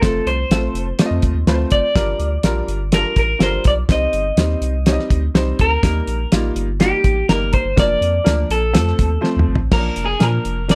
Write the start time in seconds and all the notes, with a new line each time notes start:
0.01 F1 A3 C4 F4 A4 C5, kick, snare, closed hi-hat
0.26 C2 C5, closed hi-hat
0.50 A1 A3 C4 F4 A4, snare, closed hi-hat
0.74 F1, closed hi-hat
0.99 A3 C4 F4 D5, snare, closed hi-hat
1.06 D#5
1.11 F2
1.22 D#2, kick, closed hi-hat
1.34 D#2
1.47 D2 A3 C4 F4 B4, snare, closed hi-hat
1.54 C5
1.70 F#1 D5, kick, closed hi-hat
1.96 G1 G3 D4 F4 A#4, kick, snare, closed hi-hat
2.19 D2, closed hi-hat
2.43 A#1 G3 D4 F4 A#4, snare, closed hi-hat
2.68 G1, closed hi-hat
2.92 G3 D4 F4 A4 A#4, snare, closed hi-hat
2.98 A#4
3.16 A1 A#4, kick, closed hi-hat
3.39 G1 G3 D4 F4 A4 C5, snare, closed hi-hat
3.46 A#4
3.64 B1 D5, kick, closed hi-hat
3.89 C2 G3 C4 D#4 C5 D#5, kick, snare, closed hi-hat
4.13 G1, closed hi-hat
4.37 D#2 G3 C4 D#4 C5, snare, closed hi-hat
4.61 C2, closed hi-hat
4.86 G3 C4 D#4 C#5, snare, closed hi-hat
4.92 D#5
4.99 snare
5.10 D2, kick, closed hi-hat
5.34 C2 G3 C4 D#4 C5, snare, closed hi-hat
5.59 D2 A#4, kick, closed hi-hat
5.83 D#2 G3 A#3 D#4 A#4, kick, snare, closed hi-hat
6.07 A#1, closed hi-hat
6.32 A1 G3 A#3 D#4 F4, snare, closed hi-hat
6.55 G1, closed hi-hat
6.80 G3 A#3 D#4 G4, snare, closed hi-hat
7.04 A1, kick, closed hi-hat
7.29 G1 G3 A#3 D#4 A#4, snare, closed hi-hat
7.53 C5, kick, closed hi-hat
7.65 G1
7.76 F1 F3 A#3 D4 A#4 D5, kick, snare, closed hi-hat
8.01 F2, closed hi-hat
8.24 D2 F3 A#3 D4 A#4, snare, closed hi-hat
8.50 A#1 A4, closed hi-hat
8.73 F2 F3 A3 C4 A4, snare, closed hi-hat
8.87 snare
8.99 D#2, kick, closed hi-hat
9.21 F3 A3 C4 C5, snare
9.36 D#2, mid tom
9.48 G#1
9.55 floor tom
9.60 A1
9.71 A#1 F3 A#3 C#4 A#4, kick, snare, crash
9.78 D4
9.96 F1, closed hi-hat
10.06 G#4
10.19 A#2 F3 A#3 D4 A#4, snare, closed hi-hat
10.45 F1, closed hi-hat
10.68 F3 A#3 D4 A#4 D5, snare, closed hi-hat